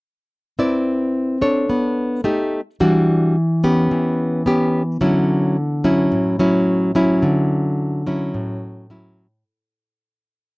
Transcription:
0.59 C4 E4 B4 D5
1.41 D4 A4 C#5
1.69 B3
2.24 A3 D#4 G4
2.80 E3 G3 D4 F#4
3.64 B3 C#4 G4
3.91 E3
4.46 B3 C#4 G4
5.01 D3 F#3 C#4 E4
5.84 F#3 C#4 E4
6.12 A2
6.39 F#3 C#4 E4
6.95 F#3 C#4 E4
7.22 D3
8.07 F#3 C#4 E4
8.34 A2
8.90 F#3 C#4 E4

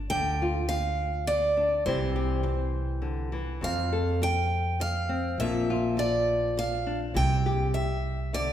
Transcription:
Already playing: F4
0.10 D2 D3 D4 G5
0.42 F4
0.68 F5, muted nylon-string guitar stroke
1.27 D5, muted nylon-string guitar stroke
1.57 D4
1.86 C2 C3 E3 C4 E4 G4 C5
2.16 G4
2.43 muted nylon-string guitar stroke
3.02 D3
3.32 E3
3.61 F2 C4 F5
3.93 A4
4.22 G5, muted nylon-string guitar stroke
4.80 F5, muted nylon-string guitar stroke
5.09 C4
5.38 A#1 A#2 F3 A#3 F4 E5
5.42 D4
5.70 F4
5.97 D5, muted nylon-string guitar stroke
6.57 F5, muted nylon-string guitar stroke
6.86 D4
7.14 C2 C3 E4 G5
7.46 G4
7.74 E5, muted nylon-string guitar stroke
8.33 D3 D5

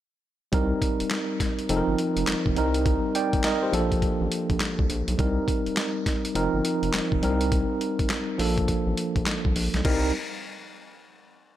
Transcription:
0.52 C2 G3 C4 D#4 A#4, kick, closed hi-hat
0.82 kick, closed hi-hat
1.00 F1, closed hi-hat
1.11 snare, clap, closed hi-hat
1.40 kick, snare, closed hi-hat
1.59 closed hi-hat
1.69 F1 F3 C4 D#4 A4, closed hi-hat
1.77 A#4
1.88 G1
1.98 closed hi-hat
2.16 F1, closed hi-hat
2.27 F1, snare, clap, closed hi-hat
2.46 F1, kick
2.56 C2 G3 C4 D#4 A#4, closed hi-hat
2.74 closed hi-hat
2.86 kick, closed hi-hat
3.15 D5 G5, closed hi-hat
3.33 A#1, kick, closed hi-hat
3.44 A#4 D#5, snare, clap, closed hi-hat
3.63 G4 C5
3.72 A#1 F3 A#3 D4 A4, closed hi-hat
3.92 kick, closed hi-hat
4.02 kick, closed hi-hat
4.20 A1
4.32 closed hi-hat
4.50 A#1, kick, closed hi-hat
4.60 snare, clap, closed hi-hat
4.79 C2, kick
4.90 A#1, closed hi-hat
5.08 B1, closed hi-hat
5.18 C2 G3 C4 D#4 A#4, kick, closed hi-hat
5.48 kick, closed hi-hat
5.66 F1, closed hi-hat
5.77 snare, clap, closed hi-hat
6.06 kick, snare, closed hi-hat
6.25 closed hi-hat
6.35 F1 F3 C4 D#4 A#4, closed hi-hat
6.54 G1
6.65 closed hi-hat
6.83 F1, closed hi-hat
6.93 F1, snare, clap, closed hi-hat
7.12 F1, kick
7.22 C2 G3 C4 D4 A#4, closed hi-hat
7.30 D#4
7.41 closed hi-hat
7.52 kick, closed hi-hat
7.81 closed hi-hat
7.99 A#1, kick, closed hi-hat
8.10 snare, clap, closed hi-hat
8.38 A#1 F3 A#3 D4 A4, open hi-hat
8.58 kick, closed hi-hat
8.68 kick, closed hi-hat
8.87 A1
8.97 closed hi-hat
9.16 A#1, kick, closed hi-hat
9.26 snare, clap, closed hi-hat
9.45 C2, kick
9.56 A#1, open hi-hat
9.74 B1, snare, closed hi-hat
9.85 C2 G3 C4 D#4 A#4, kick, crash

